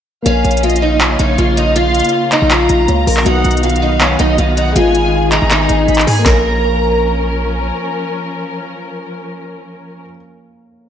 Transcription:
0.22 0.44 A#1 loud
0.22 3.23 C#3 medium
0.22 2.83 A#3 medium
0.22 3.23 A#3 medium
0.22 0.61 C#4 loud
0.22 3.23 F4 medium
0.22 2.84 A#4 medium
0.22 0.61 F5 loud
0.22 closed hi-hat medium
0.27 2.85 C#5 medium
0.27 2.86 F5 medium
0.45 1.17 A#1 loud
0.45 closed hi-hat medium
0.51 closed hi-hat medium
0.57 closed hi-hat medium
0.63 0.81 F4 medium
0.63 1.16 D#5 medium
0.63 closed hi-hat medium
0.70 closed hi-hat medium
0.76 closed hi-hat medium
0.82 1.00 D#4 medium
1.01 1.18 C#4 medium
1.01 clap loud
1.01 closed hi-hat medium
1.19 1.38 A#1 loud
1.19 1.37 D#4 medium
1.19 1.55 C#5 medium
1.19 closed hi-hat medium
1.38 2.02 A#1 loud
1.38 1.56 F4 medium
1.38 closed hi-hat medium
1.57 1.75 D#4 medium
1.57 1.75 D#5 medium
1.57 closed hi-hat medium
1.76 2.29 F4 loud
1.76 2.29 F5 loud
1.76 closed hi-hat medium
1.95 closed hi-hat medium
2.00 closed hi-hat medium
2.04 closed hi-hat medium
2.09 closed hi-hat medium
2.32 2.50 D#4 medium
2.32 3.22 A#5 medium
2.32 clap loud
2.32 closed hi-hat medium
2.42 2.69 A#1 loud
2.51 3.04 F4 loud
2.51 clap loud
2.51 closed hi-hat medium
2.69 2.88 A#1 loud
2.69 closed hi-hat medium
2.87 3.06 C#2 loud
2.87 3.25 A#3 medium
2.87 3.26 A#4 soft
2.87 3.26 C#5 medium
2.87 3.27 F5 medium
2.87 closed hi-hat medium
3.07 3.25 A#1 loud
3.07 3.25 A#4 medium
3.07 open hi-hat medium
3.17 clap medium
3.23 3.44 B1 loud
3.23 4.71 B2 medium
3.23 6.23 D#3 medium
3.23 4.72 F#3 medium
3.23 6.23 B3 medium
3.23 3.61 D#4 loud
3.23 4.74 F#4 medium
3.23 3.61 F#5 loud
3.23 closed hi-hat medium
3.27 4.73 D#4 medium
3.27 4.75 B4 medium
3.45 4.17 B1 loud
3.45 closed hi-hat medium
3.51 closed hi-hat medium
3.57 closed hi-hat medium
3.63 3.81 F4 medium
3.63 4.16 F5 loud
3.63 closed hi-hat medium
3.70 closed hi-hat medium
3.76 closed hi-hat medium
3.82 4.00 D#4 medium
4.01 4.18 C#4 medium
4.01 clap loud
4.01 closed hi-hat medium
4.19 4.38 B1 loud
4.19 4.37 D#4 medium
4.19 4.55 D#5 medium
4.19 closed hi-hat medium
4.38 4.74 B1 loud
4.38 4.56 F4 medium
4.38 closed hi-hat medium
4.57 4.75 D#4 medium
4.57 4.75 F#5 medium
4.57 closed hi-hat medium
4.72 5.39 G#1 loud
4.72 6.21 G#3 medium
4.72 5.29 F4 loud
4.72 6.22 G#4 medium
4.72 6.24 G#4 medium
4.72 5.29 G#5 loud
4.72 closed hi-hat medium
4.77 6.23 B4 medium
4.77 6.25 D#5 medium
4.95 closed hi-hat medium
5.32 5.50 D#4 loud
5.32 5.85 A#5 medium
5.32 clap loud
5.32 closed hi-hat medium
5.42 5.68 G#1 loud
5.51 6.04 D#4 medium
5.51 clap loud
5.51 closed hi-hat medium
5.69 5.88 G#1 loud
5.69 closed hi-hat medium
5.88 6.06 G#1 loud
5.88 6.06 B5 medium
5.88 closed hi-hat soft
5.95 clap loud
5.95 closed hi-hat medium
6.01 closed hi-hat medium
6.07 6.25 G#2 loud
6.07 6.25 G#4 medium
6.07 6.25 G#5 medium
6.07 open hi-hat medium
6.19 10.01 A#3 medium
6.24 7.72 A#1 loud
6.24 10.02 F3 medium
6.24 10.02 C#4 medium
6.24 10.05 A#4 medium
6.24 7.34 A#4 medium
6.24 10.02 A#4 medium
6.24 7.34 A#5 medium
6.24 kick loud
6.24 snare loud
6.24 clap medium
6.28 10.10 C#5 medium
6.33 10.14 F5 medium

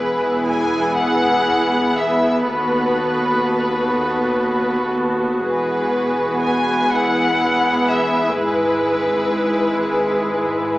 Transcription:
0.00 2.44 E1 soft
0.00 2.45 E2 soft
0.00 5.42 B3 soft
0.00 2.46 E4 soft
0.00 2.46 G#4 soft
0.00 0.45 B4 soft
0.00 5.42 B4 soft
0.48 0.99 G#5 soft
0.98 1.97 F#5 medium
1.99 2.49 E5 soft
2.48 5.41 D#2 soft
2.48 5.42 D#2 soft
2.48 6.89 F#4 soft
2.48 5.42 A4 soft
2.48 4.91 B4 soft
5.44 8.35 E1 soft
5.44 8.36 E2 soft
5.44 8.35 B3 soft
5.44 10.78 G#4 soft
5.44 6.39 B4 soft
5.44 10.78 B4 soft
6.43 6.92 G#5 soft
6.93 10.78 E4 soft
6.93 7.90 F#5 medium
7.90 8.39 E5 soft
8.39 10.78 G#1 soft
8.39 10.78 G#2 soft
8.39 10.78 G#3 soft
8.39 10.77 B4 medium

